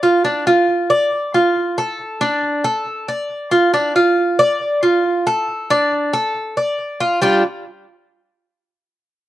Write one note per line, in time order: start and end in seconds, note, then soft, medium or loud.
0.03 0.24 F4 medium
0.25 0.46 D4 medium
0.47 0.89 F4 medium
0.90 1.32 D5 medium
1.34 1.76 F4 medium
1.78 2.20 A4 medium
2.21 2.63 D4 medium
2.64 3.07 A4 medium
3.08 3.51 D5 medium
3.51 3.73 F4 medium
3.74 3.95 D4 medium
3.96 4.38 F4 medium
4.39 4.81 D5 medium
4.83 5.25 F4 medium
5.27 5.69 A4 medium
5.70 6.12 D4 loud
6.13 6.55 A4 medium
6.57 6.99 D5 medium
7.00 7.21 F4 medium
7.22 7.42 G3 medium
7.22 7.42 D4 medium
7.22 7.42 F4 loud